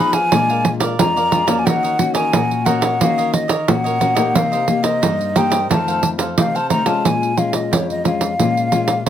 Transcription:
Already playing: nylon-string guitar F3 B3, cavaquinho D#4 G#4, flute B5
0.00 nylon-string guitar D#4 G#4, cavaquinho B4 F5
0.13 cavaquinho G#4 B4 F5, flute G#5, pandeiro
0.32 nylon-string guitar A#2 G#3 D4 F4, cavaquinho G#4 A#4 D5 F5, pandeiro
0.49 cavaquinho A#4 D5 F5, pandeiro
0.65 muted cavaquinho stroke, pandeiro
0.80 cavaquinho A#4 D5 F5, pandeiro
0.99 nylon-string guitar F2 G#3 D4 F4, flute A#5, pandeiro
1.16 cavaquinho A#4 D5 F5, pandeiro
1.31 nylon-string guitar G#3 D4 F4, cavaquinho G#4 A#4 D5 F5, pandeiro
1.47 nylon-string guitar A#3 C#4 F#4, cavaquinho A#4 D5 F5, pandeiro
1.59 flute G#5
1.66 nylon-string guitar D#3, cavaquinho F#4 A#4 C#5 D#5, flute F#5, pandeiro
1.83 cavaquinho A#4 C#5 D#5, pandeiro
1.98 nylon-string guitar A#3 C#4 F#4, muted cavaquinho stroke, pandeiro
2.14 cavaquinho A#4 C#5 D#5, flute G#5, pandeiro
2.33 nylon-string guitar A#2, cavaquinho F#4 A#4 C#5 D#5, pandeiro
2.51 pandeiro
2.65 nylon-string guitar A#3 C#4 F#4, cavaquinho F#4 A#4 C#5 D#5, flute F#5, pandeiro
2.81 cavaquinho A#4 C#5 D#5, pandeiro
3.00 nylon-string guitar D#3 A#3 C#4 F#4, cavaquinho F#4 A#4 C#5 D#5, flute F5, pandeiro
3.18 cavaquinho A#4 C#5 D#5, pandeiro
3.33 flute D#5, muted cavaquinho stroke, pandeiro
3.48 cavaquinho A#4 C#5 D#5, pandeiro
3.68 nylon-string guitar A#2 A#3 C#4 F#4, flute F#5, pandeiro
3.84 cavaquinho A#4 C#5 D#5, pandeiro
3.99 nylon-string guitar A#3 C#4 F#4, cavaquinho F#4 A#4 C#5 D#5, pandeiro
4.15 nylon-string guitar A#3 D#4 G4, cavaquinho A#4 C#5 D#5, pandeiro
4.35 nylon-string guitar C3, cavaquinho D#4 A#4 C5 D#5, flute F5, pandeiro
4.52 cavaquinho A#4 C5 D#5, pandeiro
4.68 nylon-string guitar A#3 D#4 G4, muted cavaquinho stroke, pandeiro
4.83 cavaquinho A#4 C5 D#5, flute D#5, pandeiro
5.02 nylon-string guitar G2, cavaquinho D#4 A#4 C5 D#5, pandeiro
5.21 pandeiro
5.35 nylon-string guitar A#3 D#4 G4, cavaquinho D#4 A#4 C5 D#5, flute G5, pandeiro
5.50 cavaquinho A#4 C5 D#5, pandeiro
5.69 nylon-string guitar F2 D#3 A3 C4, cavaquinho D#4 A4 C5 F5, flute A5, pandeiro
5.88 cavaquinho A4 C5 F5, pandeiro
6.03 muted cavaquinho stroke, pandeiro
6.18 cavaquinho A4 C5 F5, pandeiro
6.37 nylon-string guitar C3 D#3 A3 C4, flute F5, pandeiro
6.55 cavaquinho A4 C5 F5, flute A5, pandeiro
6.70 nylon-string guitar D#3 A3 C4, cavaquinho D#4 A4 C5 F5, flute A#5, pandeiro
6.86 nylon-string guitar G#3 C#4 F4, cavaquinho A4 C5 F5, flute A5, pandeiro
7.05 nylon-string guitar A#2, flute G#5, pandeiro
7.23 pandeiro
7.37 nylon-string guitar G#3 C#4 F4, flute F5, pandeiro
7.53 flute D#5, pandeiro
7.71 nylon-string guitar F2, flute C#5, pandeiro
7.90 flute D#5, pandeiro
8.04 nylon-string guitar G#3 C#4 F4, flute F5, pandeiro
8.21 pandeiro
8.39 nylon-string guitar A#2 G#3 C#4 F4, pandeiro
8.57 pandeiro
8.71 nylon-string guitar G#3 C#4 F4, pandeiro
8.88 pandeiro
9.06 nylon-string guitar F2 G#3

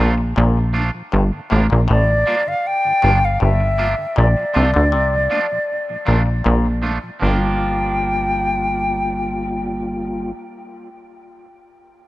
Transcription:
Already playing: clav A#2, clean electric guitar F3
0.00 analog synth bass A#1, clean electric guitar A3 D4 F4
0.18 tonewheel organ A#2 F3
0.36 analog synth bass A#1, clav A#2
0.55 tonewheel organ A#2 F3
0.73 clean electric guitar F3 A3 D4 F4, tonewheel organ A3 A#3 D4
0.94 tonewheel organ A#2 F3
1.12 analog synth bass G1, clav G2
1.32 tonewheel organ G2 D3
1.50 analog synth bass A1, clav A2, clean electric guitar F3 A#3 D4 F4, tonewheel organ G3 A#3 F4
1.70 analog synth bass A#1, clav A#2
1.88 analog synth bass A1, clav A2, flute D5
2.09 tonewheel organ G2 D3
2.26 clean electric guitar F3 A#3 D4 F4, tonewheel organ G3 A#3 F4
2.47 tonewheel organ G2 D3, flute F5
2.67 flute G5
2.85 tonewheel organ G2 D3
3.02 analog synth bass G1, clav G2, clean electric guitar F3 A#3 D4 F4, tonewheel organ G3 A#3 F4
3.23 tonewheel organ G2 D3, flute F5
3.40 analog synth bass G1, clav G2, flute E5
3.60 tonewheel organ G2 D3, muted clean electric guitar stroke
3.78 clean electric guitar F3 A#3 D4 F4, tonewheel organ G3 A#3 F4
3.99 tonewheel organ G2 D3
4.16 analog synth bass A#1, clav A#2, flute D5
4.37 tonewheel organ A#2 F3
4.54 analog synth bass C2, clav C3, clean electric guitar F3 A3 D4 F4, tonewheel organ A3 A#3 D4
4.74 analog synth bass D2, clav D3
4.92 analog synth bass C2, clav C3
5.13 tonewheel organ A#2 F3
5.30 clean electric guitar F3 A3 D4 F4, tonewheel organ A3 A#3 D4
5.52 tonewheel organ A#2 F3
5.90 tonewheel organ A#2 F3
6.05 analog synth bass A#1, clav A#2, clean electric guitar F3 A3 D4 F4, tonewheel organ A3 A#3 D4
6.26 tonewheel organ A#2 F3
6.44 analog synth bass A#1, clav A#2
6.65 tonewheel organ A#2 F3
6.82 clean electric guitar F3 A3 D4 F4, tonewheel organ A3 A#3 D4
7.03 tonewheel organ A#2 F3
7.20 analog synth bass G1, clean electric guitar F3 A#3 D4, tonewheel organ G3 A#3 F4, flute G5
7.24 clean electric guitar F4

